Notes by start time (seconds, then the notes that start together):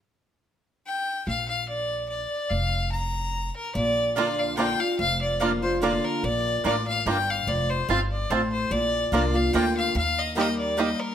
0.86 G5
1.27 A#1 F5
1.48 F5
1.68 D5
2.09 D5
2.50 F1 F5
2.92 A#5
3.56 A#4
3.75 A#1 A#2 D5
4.16 D3 A#3 D4 F4 D5 A#5
4.39 F5
4.57 D3 A#3 D4 F4 D5 G5 A#5
4.80 D4 F4 F5
4.99 F1 F2 F5
5.21 D5
5.40 D3 A#3 D4 F4 D5 A#5
5.62 D4 F4 C5
5.82 D3 A#3 D4 F4 D5 A#5
6.04 A#4
6.23 A#1 A#2 D5
6.64 A1 A2 A#3 D4 F4 D5 A#5
6.87 F5
7.06 G1 G2 A#3 D4 F4 D5 G5 A#5
7.30 F5
7.47 F1 F2 D5
7.70 C5
7.88 G1 G2 C4 F4 C5 F5 A5
8.11 D5
8.30 A1 A2 C4 F4 C5 A5
8.52 C5
8.71 A#1 A#2 D5
9.12 C2 D3 A#3 D4 F4 D5 A#5
9.34 D4 F4 F5
9.53 D2 D3 A#3 D4 F4 D5 G5 A#5
9.77 F5
9.95 D#2 D#3 F5
10.18 D#5
10.35 G3 A#3 D#4 G4 D#5 A#5
10.59 D5
10.77 G3 A#3 D#4 G4 D#5 A#5
11.00 A#4